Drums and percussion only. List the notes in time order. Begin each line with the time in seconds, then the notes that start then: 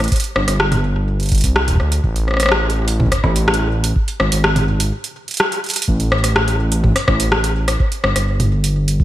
0.04 closed hi-hat
0.08 kick, closed hi-hat
0.12 closed hi-hat
0.16 closed hi-hat
0.20 closed hi-hat
0.24 closed hi-hat
0.36 cross-stick
0.48 cross-stick, closed hi-hat
0.60 cross-stick
0.72 closed hi-hat, mid tom
1.20 closed hi-hat
1.23 closed hi-hat
1.26 closed hi-hat
1.29 closed hi-hat
1.32 kick, closed hi-hat
1.35 closed hi-hat
1.38 closed hi-hat
1.41 closed hi-hat
1.44 kick, closed hi-hat
1.56 cross-stick
1.68 kick, closed hi-hat
1.70 kick
1.73 kick
1.75 kick
1.77 kick, cross-stick
1.92 closed hi-hat
2.04 kick
2.16 closed hi-hat
2.28 cross-stick
2.31 cross-stick
2.34 cross-stick
2.37 cross-stick
2.40 cross-stick, closed hi-hat
2.43 cross-stick
2.46 cross-stick
2.49 cross-stick
2.52 cross-stick
2.70 closed hi-hat
2.88 closed hi-hat
3.00 kick, mid tom
3.06 kick
3.12 kick, cross-stick, closed hi-hat
3.18 kick
3.24 kick, cross-stick
3.36 closed hi-hat
3.48 cross-stick
3.54 closed hi-hat
3.84 closed hi-hat
3.96 kick
4.08 closed hi-hat
4.20 cross-stick
4.32 closed hi-hat
4.44 cross-stick
4.56 closed hi-hat, mid tom
4.80 closed hi-hat
5.04 closed hi-hat
5.28 closed hi-hat
5.31 closed hi-hat
5.34 closed hi-hat
5.37 cross-stick, closed hi-hat
5.52 closed hi-hat
5.64 closed hi-hat
5.66 closed hi-hat
5.69 closed hi-hat
5.71 closed hi-hat
5.74 closed hi-hat
5.76 closed hi-hat
5.82 closed hi-hat
5.88 kick
6.00 closed hi-hat
6.12 cross-stick
6.24 cross-stick, closed hi-hat
6.36 cross-stick
6.48 closed hi-hat
6.72 closed hi-hat
6.84 kick, mid tom
6.96 cross-stick, closed hi-hat
7.08 kick, cross-stick
7.20 closed hi-hat
7.32 cross-stick
7.44 closed hi-hat
7.68 cross-stick, closed hi-hat
7.80 kick
7.92 closed hi-hat
8.04 cross-stick
8.16 cross-stick, closed hi-hat
8.40 closed hi-hat, mid tom
8.64 closed hi-hat
8.88 closed hi-hat
9.00 kick